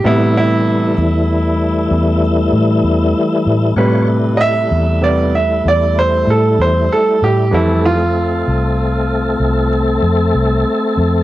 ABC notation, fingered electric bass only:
X:1
M:12/8
L:1/8
Q:3/8=64
K:Am
V:1 name="Fingered electric bass" clef=bass
A,,3 E,,3 E,,2 A,, E,, z A,, | A,,3 E,,3 E,,2 A,, E,, z A,, | F,,3 C,,3 C,,2 F,, C,, z F,, |]